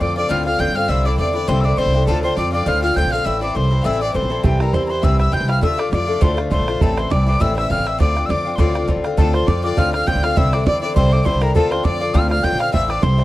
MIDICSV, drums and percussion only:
0, 0, Header, 1, 2, 480
1, 0, Start_track
1, 0, Key_signature, -1, "minor"
1, 0, Tempo, 295858
1, 1455, Time_signature, 4, 2, 24, 8
1, 21485, End_track
2, 0, Start_track
2, 0, Title_t, "Bodhran"
2, 7207, Note_on_c, 9, 64, 90
2, 7369, Note_off_c, 9, 64, 0
2, 7467, Note_on_c, 9, 64, 72
2, 7629, Note_off_c, 9, 64, 0
2, 7695, Note_on_c, 9, 64, 91
2, 7857, Note_off_c, 9, 64, 0
2, 8167, Note_on_c, 9, 64, 82
2, 8329, Note_off_c, 9, 64, 0
2, 8431, Note_on_c, 9, 64, 62
2, 8593, Note_off_c, 9, 64, 0
2, 8652, Note_on_c, 9, 64, 75
2, 8814, Note_off_c, 9, 64, 0
2, 8914, Note_on_c, 9, 64, 62
2, 9076, Note_off_c, 9, 64, 0
2, 9127, Note_on_c, 9, 64, 77
2, 9290, Note_off_c, 9, 64, 0
2, 9399, Note_on_c, 9, 64, 69
2, 9561, Note_off_c, 9, 64, 0
2, 9617, Note_on_c, 9, 64, 90
2, 9779, Note_off_c, 9, 64, 0
2, 10090, Note_on_c, 9, 64, 88
2, 10252, Note_off_c, 9, 64, 0
2, 10353, Note_on_c, 9, 64, 75
2, 10515, Note_off_c, 9, 64, 0
2, 10569, Note_on_c, 9, 64, 81
2, 10731, Note_off_c, 9, 64, 0
2, 10838, Note_on_c, 9, 64, 76
2, 11001, Note_off_c, 9, 64, 0
2, 11051, Note_on_c, 9, 64, 102
2, 11214, Note_off_c, 9, 64, 0
2, 11317, Note_on_c, 9, 64, 78
2, 11479, Note_off_c, 9, 64, 0
2, 11542, Note_on_c, 9, 64, 116
2, 11704, Note_off_c, 9, 64, 0
2, 12025, Note_on_c, 9, 64, 70
2, 12187, Note_off_c, 9, 64, 0
2, 12296, Note_on_c, 9, 64, 62
2, 12459, Note_off_c, 9, 64, 0
2, 12505, Note_on_c, 9, 64, 67
2, 12667, Note_off_c, 9, 64, 0
2, 12764, Note_on_c, 9, 64, 54
2, 12926, Note_off_c, 9, 64, 0
2, 12983, Note_on_c, 9, 64, 74
2, 13145, Note_off_c, 9, 64, 0
2, 13251, Note_on_c, 9, 64, 56
2, 13413, Note_off_c, 9, 64, 0
2, 13468, Note_on_c, 9, 64, 89
2, 13630, Note_off_c, 9, 64, 0
2, 13938, Note_on_c, 9, 64, 76
2, 14100, Note_off_c, 9, 64, 0
2, 14203, Note_on_c, 9, 64, 69
2, 14366, Note_off_c, 9, 64, 0
2, 14416, Note_on_c, 9, 64, 67
2, 14578, Note_off_c, 9, 64, 0
2, 14675, Note_on_c, 9, 64, 68
2, 14837, Note_off_c, 9, 64, 0
2, 14895, Note_on_c, 9, 64, 81
2, 15057, Note_off_c, 9, 64, 0
2, 15155, Note_on_c, 9, 64, 61
2, 15318, Note_off_c, 9, 64, 0
2, 15380, Note_on_c, 9, 64, 100
2, 15542, Note_off_c, 9, 64, 0
2, 15863, Note_on_c, 9, 64, 87
2, 16025, Note_off_c, 9, 64, 0
2, 16127, Note_on_c, 9, 64, 63
2, 16290, Note_off_c, 9, 64, 0
2, 16348, Note_on_c, 9, 64, 86
2, 16510, Note_off_c, 9, 64, 0
2, 16613, Note_on_c, 9, 64, 76
2, 16775, Note_off_c, 9, 64, 0
2, 16827, Note_on_c, 9, 64, 94
2, 16989, Note_off_c, 9, 64, 0
2, 17086, Note_on_c, 9, 64, 74
2, 17249, Note_off_c, 9, 64, 0
2, 17306, Note_on_c, 9, 64, 111
2, 17468, Note_off_c, 9, 64, 0
2, 17789, Note_on_c, 9, 64, 85
2, 17951, Note_off_c, 9, 64, 0
2, 18269, Note_on_c, 9, 64, 78
2, 18431, Note_off_c, 9, 64, 0
2, 18521, Note_on_c, 9, 64, 72
2, 18683, Note_off_c, 9, 64, 0
2, 18753, Note_on_c, 9, 64, 85
2, 18916, Note_off_c, 9, 64, 0
2, 19014, Note_on_c, 9, 64, 72
2, 19176, Note_off_c, 9, 64, 0
2, 19225, Note_on_c, 9, 64, 96
2, 19387, Note_off_c, 9, 64, 0
2, 19712, Note_on_c, 9, 64, 73
2, 19874, Note_off_c, 9, 64, 0
2, 19976, Note_on_c, 9, 64, 66
2, 20138, Note_off_c, 9, 64, 0
2, 20187, Note_on_c, 9, 64, 78
2, 20349, Note_off_c, 9, 64, 0
2, 20448, Note_on_c, 9, 64, 66
2, 20610, Note_off_c, 9, 64, 0
2, 20667, Note_on_c, 9, 64, 78
2, 20830, Note_off_c, 9, 64, 0
2, 20926, Note_on_c, 9, 64, 65
2, 21089, Note_off_c, 9, 64, 0
2, 21139, Note_on_c, 9, 64, 95
2, 21301, Note_off_c, 9, 64, 0
2, 21407, Note_on_c, 9, 64, 48
2, 21485, Note_off_c, 9, 64, 0
2, 21485, End_track
0, 0, End_of_file